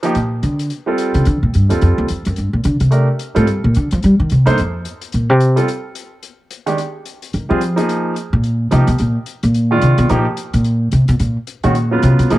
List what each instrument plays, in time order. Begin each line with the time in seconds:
0.03 grand piano F3 A#3 D#4 G4, closed hi-hat
0.15 upright bass A#2, closed hi-hat
0.43 upright bass D3, closed hi-hat
0.59 closed hi-hat
0.70 closed hi-hat
0.86 grand piano G3 C4 F4 A4
0.98 closed hi-hat
1.14 upright bass C#3, closed hi-hat
1.25 upright bass D3, closed hi-hat
1.43 upright bass A#2
1.54 upright bass G2, closed hi-hat
1.69 upright bass D#2, grand piano G3 C4 F4 A4, closed hi-hat
1.81 upright bass F2, closed hi-hat
1.98 upright bass D#2
2.08 upright bass F2, closed hi-hat
2.25 upright bass F#2, closed hi-hat
2.36 upright bass G2, closed hi-hat
2.53 upright bass A#2
2.64 upright bass D3, closed hi-hat
2.80 upright bass C3, closed hi-hat
2.91 grand piano A3 D4 G4 A#4, closed hi-hat
3.19 closed hi-hat
3.35 upright bass A2, grand piano G3 C4 F4 A4, closed hi-hat
3.47 upright bass G2, closed hi-hat
3.64 upright bass A#2
3.75 upright bass D3, closed hi-hat
3.91 upright bass F3, closed hi-hat
4.03 upright bass G3, closed hi-hat
4.20 upright bass D#3
4.30 upright bass C3, closed hi-hat
4.46 upright bass G2, grand piano A#3 D#4 A4 C5, closed hi-hat
4.58 upright bass F2, closed hi-hat
4.85 closed hi-hat
5.01 closed hi-hat
5.12 upright bass A#2, closed hi-hat
5.30 upright bass C3
5.40 closed hi-hat
5.56 grand piano G3 C4 F4 A4, closed hi-hat
5.68 closed hi-hat
5.95 closed hi-hat
6.23 closed hi-hat
6.50 closed hi-hat
6.66 grand piano D#3 G#3 D4 G4, closed hi-hat
6.78 closed hi-hat
7.05 closed hi-hat
7.22 closed hi-hat
7.33 upright bass D#3, closed hi-hat
7.49 upright bass F3, grand piano G3 C4 F4 G#4
7.61 closed hi-hat
7.76 grand piano F3 A#3 D#4 G#4, closed hi-hat
7.89 closed hi-hat
8.16 closed hi-hat
8.33 upright bass A#2
8.43 closed hi-hat
8.71 upright bass C3, grand piano F3 A#3 D#4 G4, closed hi-hat
8.87 upright bass B2, closed hi-hat
8.98 upright bass A#2, closed hi-hat
9.26 closed hi-hat
9.43 upright bass A#2, closed hi-hat
9.54 closed hi-hat
9.71 grand piano D#3 G#3 D4 F4
9.81 upright bass C3, closed hi-hat
9.98 upright bass B2, closed hi-hat
10.09 upright bass A#2, grand piano F3 A#3 D#4 G4, closed hi-hat
10.37 closed hi-hat
10.54 upright bass A#2, closed hi-hat
10.64 closed hi-hat
10.92 upright bass C3, closed hi-hat
11.08 upright bass B2, closed hi-hat
11.20 upright bass A#2, closed hi-hat
11.47 closed hi-hat
11.63 upright bass A#2, grand piano D#3 G#3 C#4 F#4, closed hi-hat
11.75 closed hi-hat
11.91 grand piano C#3 F#3 B3 F4
12.02 upright bass C3, closed hi-hat
12.19 upright bass B2, closed hi-hat
12.30 upright bass A#2, grand piano F3 A#3 D#4 G#4, closed hi-hat